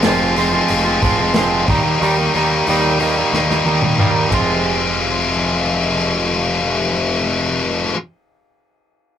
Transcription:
0.03 picked electric bass F1, clean electric guitar F3 G#3 C4 F4, snare, open hi-hat
0.37 clean electric guitar F3 G#3 C4 F4, open hi-hat
0.53 clean electric guitar G#3 C4 F4
0.68 picked electric bass F1, distorted electric guitar F3 G#3 C4 F4, open hi-hat
0.85 clean electric guitar G#3 C4 F4
1.01 picked electric bass F1, clean electric guitar F3 G#3 C4 F4, kick, open hi-hat
1.18 clean electric guitar G#3 C4 F4
1.34 picked electric bass F1, clean electric guitar F3 G#3 C4 F4, snare, open hi-hat
1.68 picked electric bass D#2, clean electric guitar D#3 G3 A#3 D#4, kick, open hi-hat
1.84 clean electric guitar G3 A#3 D#4
2.00 picked electric bass D#2, clean electric guitar D#3 G3 A#3 D#4, open hi-hat
2.18 clean electric guitar G3 A#3 D#4
2.34 picked electric bass D#2, clean electric guitar D#3 G3 A#3 D#4, open hi-hat
2.67 picked electric bass D#2, clean electric guitar D#3 G3 A#3 D#4, open hi-hat
3.00 clean electric guitar D#3 G3 A#3 D#4, open hi-hat
3.18 clean electric guitar G3 A#3 D#4
3.33 picked electric bass D#2, distorted electric guitar D#3 G3 A#3 D#4, snare
3.49 clean electric guitar G3 A#3 D#4, snare
3.65 picked electric bass D#2, clean electric guitar D#3 G3 A#3 D#4
3.81 clean electric guitar G3 A#3 D#4, high tom
3.98 picked electric bass D#2, clean electric guitar D#3 G3 A#3 D#4, mid tom
4.30 picked electric bass F1, distorted electric guitar F2 C3, clean electric guitar F3 G#3 C4, kick, ride
4.34 clean electric guitar F4

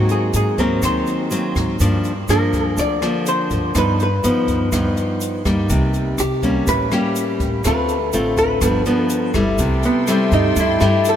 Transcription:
Already playing: upright bass G#2, nylon-string guitar G#2 F#3 A#3 C4
0.09 hollow-body jazz guitar G#4, closed hi-hat, shaker
0.34 upright bass G#2, hollow-body jazz guitar G#4, closed hi-hat, shaker
0.58 nylon-string guitar F#3 A#3 C4, hollow-body jazz guitar A#4, kick, closed hi-hat, shaker
0.82 upright bass D#2, nylon-string guitar D#3, hollow-body jazz guitar C5, kick, cross-stick, closed hi-hat, shaker
1.06 closed hi-hat, shaker
1.31 nylon-string guitar F#3 A#3 C4, closed hi-hat, shaker
1.56 upright bass G#2, kick, cross-stick, closed hi-hat, shaker
1.79 upright bass G2, nylon-string guitar G2 F3 A#3 D4, kick, closed hi-hat, shaker
2.04 closed hi-hat, shaker
2.28 upright bass G2, nylon-string guitar F3 A#3 D4, hollow-body jazz guitar A#4, cross-stick, closed hi-hat, shaker
2.53 kick, closed hi-hat, shaker
2.77 upright bass D2, nylon-string guitar D3, hollow-body jazz guitar D5, kick, closed hi-hat, shaker
3.02 nylon-string guitar F3 A#3 D4, cross-stick, closed hi-hat, shaker
3.26 hollow-body jazz guitar C5, closed hi-hat, shaker
3.51 upright bass G2, kick, closed hi-hat, shaker
3.75 nylon-string guitar G2 F3 B3 D#4, upright bass G2, hollow-body jazz guitar B4, kick, cross-stick, closed hi-hat, shaker
4.00 hollow-body jazz guitar B4, closed hi-hat, shaker
4.24 upright bass G2, nylon-string guitar F3 B3 D#4, closed hi-hat, shaker
4.48 kick, closed hi-hat, shaker
4.72 upright bass D#2, nylon-string guitar G2 F3 B3 D#4, kick, cross-stick, closed hi-hat, shaker
4.97 closed hi-hat, shaker
5.21 closed hi-hat, shaker
5.45 upright bass G2, nylon-string guitar G3 A#3 D#4, kick, cross-stick, closed hi-hat, shaker
5.69 upright bass C2, nylon-string guitar C3, kick, closed hi-hat, shaker
5.94 closed hi-hat, shaker
6.18 upright bass C2, hollow-body jazz guitar G4, cross-stick, closed hi-hat, shaker
6.43 nylon-string guitar G3 A#3 C#4, kick, closed hi-hat, shaker
6.67 upright bass A1, nylon-string guitar A2, hollow-body jazz guitar B4, kick, closed hi-hat, shaker
6.91 nylon-string guitar G3 A#3 C#4, hollow-body jazz guitar G4, cross-stick, closed hi-hat, shaker
7.16 closed hi-hat, shaker
7.40 upright bass A1, kick, closed hi-hat, shaker
7.64 upright bass D2, nylon-string guitar D3 A3 C4 F4, hollow-body jazz guitar B4, kick, cross-stick, closed hi-hat, shaker
7.89 closed hi-hat, shaker
8.13 upright bass A1, nylon-string guitar A3 C4 F4, closed hi-hat, shaker
8.37 hollow-body jazz guitar B4, kick, closed hi-hat, shaker
8.61 upright bass G1, nylon-string guitar G2 F3 B3 D4, kick, cross-stick, closed hi-hat, shaker
8.86 nylon-string guitar F3 B3 D4, closed hi-hat, shaker
9.10 closed hi-hat, shaker
9.34 upright bass G1, nylon-string guitar G3 A3 E4, kick, cross-stick, closed hi-hat, shaker
9.58 upright bass C2, nylon-string guitar C3, string section A4 E5 G5 C6, kick, closed hi-hat, shaker
9.83 hollow-body jazz guitar B3, closed hi-hat, shaker
10.07 nylon-string guitar G3 A3 E4, hollow-body jazz guitar C4, cross-stick, closed hi-hat, shaker
10.32 upright bass G2, hollow-body jazz guitar D#4, kick, closed hi-hat, shaker
10.56 nylon-string guitar G2, upright bass G2, hollow-body jazz guitar E4, kick, closed hi-hat, shaker
10.80 upright bass G2, nylon-string guitar G3 A3 E4, hollow-body jazz guitar G4, cross-stick, closed hi-hat, shaker
11.05 closed hi-hat, shaker
11.09 hollow-body jazz guitar A4

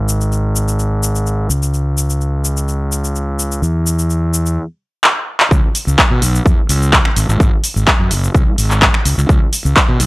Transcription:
Already playing: fingered electric bass G#1
0.09 cabasa
0.21 cabasa
0.32 cabasa
0.56 cabasa
0.68 cabasa
0.79 cabasa
1.03 cabasa
1.15 cabasa
1.27 cabasa
1.50 fingered electric bass C#2, cabasa
1.63 cabasa
1.74 cabasa
1.98 cabasa
2.10 cabasa
2.21 cabasa
2.45 cabasa
2.57 cabasa
2.68 cabasa
2.92 cabasa
3.04 cabasa
3.16 cabasa
3.39 cabasa
3.52 cabasa
3.62 fingered electric bass E2, cabasa
3.87 cabasa
3.99 cabasa
4.10 cabasa
4.34 cabasa
4.46 cabasa
5.04 clap
5.40 clap
5.51 fingered electric bass C#2, kick, cabasa
5.75 open hi-hat, cabasa
5.87 fingered electric bass C#2, cabasa
5.98 kick, clap, cabasa
6.11 fingered electric bass B2
6.22 fingered electric bass B1, open hi-hat, cabasa
6.35 cabasa
6.46 kick, cabasa
6.69 fingered electric bass C#2, open hi-hat, cabasa
6.82 cabasa
6.93 kick, clap, cabasa
7.05 finger snap
7.16 fingered electric bass G#1, open hi-hat, cabasa
7.29 fingered electric bass G#1, cabasa
7.40 fingered electric bass G#1, kick, cabasa
7.64 open hi-hat, cabasa
7.76 fingered electric bass G#1, cabasa
7.87 kick, clap, cabasa
8.00 fingered electric bass F#2
8.11 fingered electric bass F#1, open hi-hat, cabasa
8.24 cabasa
8.35 fingered electric bass C2, kick, cabasa
8.58 fingered electric bass G#1, open hi-hat, cabasa
8.71 clap, cabasa
8.82 kick, clap, cabasa
8.94 finger snap
9.05 fingered electric bass C#2, open hi-hat, cabasa
9.18 fingered electric bass C#2, cabasa
9.29 fingered electric bass C#2, kick, cabasa
9.53 open hi-hat, cabasa
9.65 fingered electric bass C#2, cabasa
9.76 kick, clap, cabasa
9.89 fingered electric bass B2
10.00 fingered electric bass B1, open hi-hat, cabasa

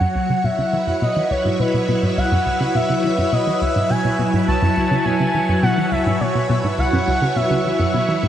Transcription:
Already playing: string machine F#3 F#4 C#5, analog synth lead F#5
0.01 synth arpeggio sound F#2
0.15 synth arpeggio sound C#2
0.30 synth arpeggio sound C#3
0.42 synth arpeggio sound B2, string machine E4, analog synth lead E5
0.59 synth arpeggio sound C#3
0.70 synth arpeggio sound E3, string machine B4
0.87 synth arpeggio sound F#2
1.02 synth arpeggio sound B2, analog synth lead D#5
1.17 synth arpeggio sound E3
1.31 synth arpeggio sound C#2, analog synth lead C#5
1.45 synth arpeggio sound G#2
1.60 synth arpeggio sound B2, analog synth lead B4
1.74 synth arpeggio sound B2
1.89 synth arpeggio sound B2
2.03 synth arpeggio sound G#2
2.17 synth arpeggio sound C#2, analog synth lead F#5
2.32 synth arpeggio sound F#2
2.46 synth arpeggio sound C#2
2.61 synth arpeggio sound C#3
2.75 synth arpeggio sound B2, analog synth lead E5
2.90 synth arpeggio sound C#3
3.04 synth arpeggio sound E3
3.18 synth arpeggio sound F#2
3.33 synth arpeggio sound B2, analog synth lead D#5
3.47 synth arpeggio sound E3
3.61 synth arpeggio sound C#2, analog synth lead E5
3.76 synth arpeggio sound G#2
3.90 synth arpeggio sound B2, analog synth lead G#5
4.05 synth arpeggio sound B2
4.19 synth arpeggio sound B2
4.34 synth arpeggio sound G#2
4.48 synth arpeggio sound C#2, analog synth lead A5
4.62 synth arpeggio sound F#2
4.77 synth arpeggio sound C#2
4.91 synth arpeggio sound C#3
5.05 synth arpeggio sound B2, analog synth lead G#5
5.20 synth arpeggio sound C#3
5.35 synth arpeggio sound E3
5.49 synth arpeggio sound F#2
5.63 synth arpeggio sound B2, analog synth lead F#5
5.78 synth arpeggio sound E3
5.92 synth arpeggio sound C#2, analog synth lead E5
6.06 synth arpeggio sound G#2
6.21 synth arpeggio sound B2, analog synth lead C#5
6.35 synth arpeggio sound B2
6.50 synth arpeggio sound B2
6.64 synth arpeggio sound G#2
6.78 synth arpeggio sound C#2, analog synth lead F#5
6.93 synth arpeggio sound F#2
7.08 synth arpeggio sound C#2
7.22 synth arpeggio sound C#3
7.36 synth arpeggio sound B2, analog synth lead E5
7.51 synth arpeggio sound C#3
7.65 synth arpeggio sound E3
7.80 synth arpeggio sound F#2
7.94 synth arpeggio sound B2, analog synth lead E5
8.09 synth arpeggio sound E3
8.23 synth arpeggio sound G#2

